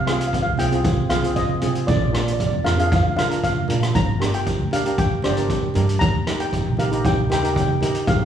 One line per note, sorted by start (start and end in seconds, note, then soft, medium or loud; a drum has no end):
0.00 0.34 C2 medium
0.06 0.38 C4 medium
0.06 0.38 F4 medium
0.06 0.38 G#4 medium
0.06 0.11 F5 medium
0.06 cross-stick medium
0.06 closed hi-hat medium
0.12 0.19 F5 medium
0.20 0.26 F5 medium
0.20 closed hi-hat medium
0.27 0.34 F5 medium
0.33 0.41 F5 medium
0.33 kick medium
0.33 closed hi-hat medium
0.33 low conga medium
0.42 0.50 F5 medium
0.42 high conga medium
0.47 0.56 C2 medium
0.57 0.98 C2 medium
0.57 0.66 C4 medium
0.57 0.66 F4 medium
0.57 0.66 G#4 medium
0.57 1.12 G5 medium
0.57 closed hi-hat medium
0.57 low conga medium
0.72 0.95 C4 medium
0.72 0.95 F4 medium
0.72 0.95 G#4 medium
0.72 closed hi-hat medium
0.84 kick loud
0.84 closed hi-hat medium
1.09 1.50 C2 medium
1.09 1.18 C4 medium
1.09 1.18 F4 medium
1.09 1.18 G#4 medium
1.09 1.37 F5 medium
1.09 cross-stick medium
1.09 closed hi-hat medium
1.09 high conga medium
1.09 low conga medium
1.23 1.46 C4 medium
1.23 1.46 F4 medium
1.23 1.46 G#4 medium
1.23 closed hi-hat medium
1.36 1.73 D#5 medium
1.36 kick medium
1.36 closed hi-hat medium
1.36 high conga medium
1.49 high conga medium
1.61 1.82 C3 loud
1.61 1.88 C4 medium
1.61 1.88 F4 medium
1.61 1.88 G#4 medium
1.61 closed hi-hat medium
1.61 low conga medium
1.75 closed hi-hat medium
1.87 1.98 A#1 loud
1.87 1.95 D5 medium
1.87 kick loud
1.87 closed hi-hat medium
1.97 2.02 D5 medium
2.01 2.41 A#1 medium
2.01 2.10 D5 medium
2.11 2.44 D4 medium
2.11 2.44 F4 medium
2.11 2.44 A#4 medium
2.11 2.16 D5 soft
2.11 cross-stick medium
2.11 closed hi-hat medium
2.17 2.26 D5 medium
2.27 2.31 D5 medium
2.27 closed hi-hat medium
2.33 2.39 D5 medium
2.39 2.46 D5 medium
2.39 kick medium
2.39 closed hi-hat medium
2.39 low conga medium
2.47 2.55 D5 medium
2.52 2.63 F2 medium
2.52 high conga medium
2.64 3.17 F2 medium
2.64 2.73 D4 medium
2.64 2.73 F4 medium
2.64 2.73 A#4 medium
2.64 2.71 F5 medium
2.64 cross-stick medium
2.64 closed hi-hat medium
2.64 low conga medium
2.72 2.79 F5 medium
2.78 3.01 D4 medium
2.78 3.01 F4 medium
2.78 3.01 G#4 medium
2.78 2.86 F5 medium
2.78 closed hi-hat medium
2.87 2.94 F5 medium
2.92 3.02 F5 medium
2.92 kick loud
2.92 closed hi-hat medium
3.03 3.11 F5 medium
3.16 3.56 A#1 medium
3.16 3.25 D4 medium
3.16 3.25 F4 medium
3.16 3.25 A#4 medium
3.16 3.42 F5 medium
3.16 cross-stick medium
3.16 closed hi-hat medium
3.16 high conga medium
3.16 low conga medium
3.29 3.53 D4 medium
3.29 3.53 F4 medium
3.29 3.53 A#4 medium
3.29 closed hi-hat medium
3.43 3.80 F5 medium
3.43 kick medium
3.43 closed hi-hat medium
3.55 high conga medium
3.68 3.89 A#2 medium
3.68 3.94 D4 medium
3.68 3.95 F4 medium
3.68 3.95 A#4 medium
3.68 closed hi-hat medium
3.68 low conga medium
3.83 cross-stick medium
3.83 closed hi-hat medium
3.95 4.05 G1 loud
3.95 4.35 A#5 medium
3.95 kick loud
3.95 closed hi-hat medium
4.09 4.47 G1 medium
4.20 4.51 D4 medium
4.20 4.51 G4 medium
4.20 4.51 A#4 medium
4.20 cross-stick medium
4.20 closed hi-hat medium
4.34 4.73 G5 medium
4.34 closed hi-hat medium
4.46 kick medium
4.46 closed hi-hat medium
4.46 low conga medium
4.59 4.69 D2 medium
4.59 high conga medium
4.71 5.25 D2 medium
4.71 4.80 D4 medium
4.71 4.80 G4 medium
4.71 4.80 A#4 medium
4.71 4.99 F5 medium
4.71 closed hi-hat medium
4.71 low conga medium
4.85 5.08 D4 medium
4.85 5.08 G4 medium
4.85 5.08 A#4 medium
4.85 closed hi-hat medium
4.98 5.10 G5 medium
4.98 kick loud
4.98 closed hi-hat medium
5.22 5.63 G1 medium
5.22 5.31 D4 medium
5.22 5.31 G4 medium
5.22 5.31 C5 medium
5.22 5.72 D5 medium
5.22 cross-stick medium
5.22 closed hi-hat medium
5.22 high conga medium
5.22 low conga medium
5.37 5.60 D4 medium
5.37 5.60 G4 medium
5.37 5.60 A#4 medium
5.37 closed hi-hat medium
5.48 kick medium
5.48 closed hi-hat medium
5.48 high conga medium
5.61 high conga medium
5.74 5.95 G2 medium
5.74 6.01 D4 medium
5.74 6.01 G4 medium
5.74 6.01 A#4 medium
5.74 closed hi-hat medium
5.74 low conga medium
5.89 closed hi-hat medium
5.99 6.11 D#2 loud
5.99 6.40 A#5 loud
5.99 kick loud
5.99 closed hi-hat medium
6.15 6.54 D#2 medium
6.27 6.58 D#4 medium
6.27 6.58 G4 medium
6.27 6.58 A#4 medium
6.27 cross-stick medium
6.27 closed hi-hat medium
6.40 6.79 G5 medium
6.40 closed hi-hat medium
6.51 kick medium
6.51 closed hi-hat medium
6.51 low conga medium
6.65 6.75 A#1 medium
6.65 high conga medium
6.77 7.30 A#1 medium
6.77 6.86 D#4 medium
6.77 6.86 G4 medium
6.77 6.86 A#4 medium
6.77 7.05 F5 medium
6.77 closed hi-hat medium
6.77 low conga medium
6.91 7.14 D#4 medium
6.91 7.15 G4 medium
6.91 7.15 A#4 medium
6.91 closed hi-hat medium
7.05 7.31 G5 medium
7.05 kick loud
7.05 closed hi-hat medium
7.30 7.69 D#2 medium
7.30 7.38 D#4 medium
7.30 7.38 G4 medium
7.30 7.38 A#4 medium
7.30 7.38 G5 medium
7.30 cross-stick medium
7.30 closed hi-hat medium
7.30 high conga medium
7.30 low conga medium
7.40 7.66 D#4 medium
7.40 7.66 G4 medium
7.40 7.66 A#4 medium
7.40 7.45 G5 medium
7.44 7.52 G5 medium
7.44 closed hi-hat medium
7.54 7.60 G5 medium
7.54 kick medium
7.54 closed hi-hat medium
7.54 high conga medium
7.61 7.67 G5 medium
7.68 7.75 G5 medium
7.68 high conga medium
7.81 8.01 D#3 loud
7.81 8.07 D#4 medium
7.81 8.07 G4 medium
7.81 8.07 A#4 medium
7.81 closed hi-hat medium
7.81 low conga medium
7.95 closed hi-hat medium
8.07 8.17 G#1 loud
8.07 8.25 F5 medium
8.07 kick loud
8.07 closed hi-hat medium
8.21 8.25 G#1 medium